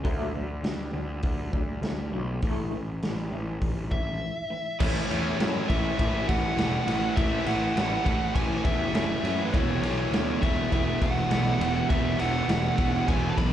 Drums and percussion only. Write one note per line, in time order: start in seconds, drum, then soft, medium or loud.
0.05 kick medium
0.05 open hi-hat soft
0.64 snare medium
0.64 open hi-hat soft
1.23 kick medium
1.23 open hi-hat soft
1.53 kick medium
1.83 snare medium
1.83 open hi-hat soft
2.42 kick medium
2.42 open hi-hat soft
3.03 snare medium
3.03 open hi-hat soft
3.62 kick medium
3.62 open hi-hat soft
3.91 kick medium
4.80 kick loud
4.80 crash loud
5.11 ride medium
5.40 snare loud
5.40 ride loud
5.70 kick medium
5.70 ride medium
5.99 kick loud
5.99 ride loud
6.29 kick medium
6.29 ride medium
6.58 snare loud
6.58 ride loud
6.88 ride medium
7.17 kick loud
7.17 ride loud
7.46 ride medium
7.77 snare loud
7.77 ride loud
8.06 kick medium
8.06 ride medium
8.35 kick loud
8.35 ride loud
8.65 kick loud
8.65 ride medium
8.95 snare loud
8.95 ride loud
9.25 ride medium
9.54 kick loud
9.54 ride loud
9.83 ride medium
10.13 snare loud
10.13 ride loud
10.43 kick medium
10.43 ride medium
10.72 kick medium
10.72 ride loud
11.02 kick medium
11.02 ride medium
11.31 snare loud
11.31 ride loud
11.61 ride medium
11.90 kick loud
11.90 ride loud
12.19 ride medium
12.49 snare loud
12.49 ride loud
12.78 kick medium
12.78 ride medium
13.08 kick medium
13.08 ride loud
13.38 kick medium
13.38 ride medium